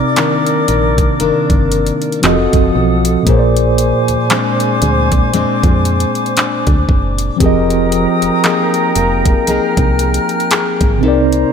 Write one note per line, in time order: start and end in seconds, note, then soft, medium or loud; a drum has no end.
0.00 2.17 C3 medium
0.00 2.35 C3 medium
0.00 0.17 C4 medium
0.00 2.18 C4 medium
0.00 2.20 D#4 medium
0.00 1.60 G4 medium
0.00 2.20 A#4 medium
0.00 2.21 A#4 medium
0.00 2.20 D5 medium
0.00 2.22 D5 medium
0.00 1.92 D6 medium
0.16 0.68 D#3 medium
0.16 1.19 A#3 medium
0.16 1.20 D4 medium
0.16 clap loud
0.16 closed hi-hat medium
0.46 closed hi-hat medium
0.68 1.11 A#1 medium
0.68 1.20 D#3 medium
0.68 closed hi-hat medium
0.98 kick loud
0.98 closed hi-hat medium
1.20 1.32 G1 soft
1.20 2.23 D#3 medium
1.20 2.36 A#3 medium
1.20 2.36 D4 medium
1.20 closed hi-hat medium
1.50 1.92 G1 medium
1.50 kick loud
1.50 closed hi-hat soft
1.72 closed hi-hat medium
1.87 closed hi-hat medium
2.02 closed hi-hat soft
2.12 closed hi-hat soft
2.22 2.48 F1 loud
2.22 3.26 F3 medium
2.22 4.30 F3 medium
2.22 3.26 C4 medium
2.22 3.27 F#4 medium
2.22 2.32 G#4 medium
2.22 3.26 A4 medium
2.22 3.26 F#5 medium
2.22 3.26 D#6 medium
2.22 clap loud
2.22 closed hi-hat medium
2.26 3.28 D#5 medium
2.32 3.31 A4 medium
2.53 2.71 F#1 loud
2.53 kick loud
2.53 closed hi-hat soft
2.76 3.17 B1 loud
3.05 closed hi-hat medium
3.23 7.35 A#2 medium
3.23 7.36 A#3 medium
3.23 7.36 D6 medium
3.23 closed hi-hat medium
3.27 3.93 A#1 loud
3.27 7.41 A#2 medium
3.27 7.37 G#4 medium
3.27 7.09 C5 medium
3.27 7.38 C5 medium
3.27 7.13 G#5 medium
3.27 kick loud
3.32 3.37 C#5 medium
3.39 7.43 D5 medium
3.57 closed hi-hat medium
3.78 closed hi-hat medium
4.08 4.18 D2 soft
4.08 closed hi-hat medium
4.30 4.82 G#3 medium
4.30 5.34 C4 medium
4.30 5.34 D4 medium
4.30 clap loud
4.30 closed hi-hat medium
4.60 closed hi-hat medium
4.82 5.24 D2 medium
4.82 5.33 G#3 medium
4.82 closed hi-hat medium
5.12 kick loud
5.12 closed hi-hat medium
5.34 5.46 F2 medium
5.34 7.40 G#3 medium
5.34 8.43 C4 medium
5.34 6.36 D4 medium
5.34 closed hi-hat medium
5.63 6.06 F2 medium
5.63 kick loud
5.63 closed hi-hat soft
5.85 closed hi-hat medium
6.00 closed hi-hat medium
6.15 closed hi-hat soft
6.26 closed hi-hat soft
6.37 7.52 D4 medium
6.37 clap loud
6.37 closed hi-hat medium
6.67 6.85 D2 loud
6.67 kick loud
6.67 closed hi-hat soft
6.89 7.31 F#1 loud
6.89 kick medium
7.18 closed hi-hat medium
7.36 10.97 F3 medium
7.36 10.97 C4 medium
7.36 10.98 G4 medium
7.40 8.07 F1 loud
7.40 11.15 F3 medium
7.40 10.99 G#4 medium
7.40 10.99 A#4 medium
7.40 11.00 A#4 medium
7.40 10.99 G5 medium
7.40 10.99 A#5 medium
7.40 9.15 D#6 medium
7.40 kick loud
7.40 closed hi-hat medium
7.46 11.01 D#5 medium
7.70 closed hi-hat medium
7.92 closed hi-hat medium
8.22 8.31 F1 soft
8.22 closed hi-hat medium
8.44 8.95 A#3 medium
8.44 9.48 D#4 medium
8.44 9.48 G#4 medium
8.44 clap loud
8.44 closed hi-hat medium
8.74 closed hi-hat medium
8.96 9.38 F1 medium
8.96 9.47 A#3 medium
8.96 closed hi-hat medium
9.25 kick loud
9.25 closed hi-hat medium
9.47 9.60 C2 medium
9.47 11.53 A#3 medium
9.47 11.53 D#4 medium
9.47 10.50 G#4 medium
9.47 11.01 F6 loud
9.47 closed hi-hat medium
9.77 10.20 C2 loud
9.77 kick loud
9.77 closed hi-hat soft
9.99 closed hi-hat medium
10.14 closed hi-hat medium
10.29 closed hi-hat soft
10.40 closed hi-hat soft
10.51 11.15 G#4 medium
10.51 clap loud
10.51 closed hi-hat medium
10.81 11.05 G#1 medium
10.81 kick loud
10.81 closed hi-hat soft
10.98 11.53 C3 medium
10.98 11.53 C4 medium
11.03 11.45 C2 loud
11.03 11.53 C3 medium
11.03 11.53 D#4 medium
11.03 11.53 A#4 medium
11.03 11.53 C5 medium
11.03 11.53 A#5 medium
11.08 11.53 D5 medium
11.32 closed hi-hat medium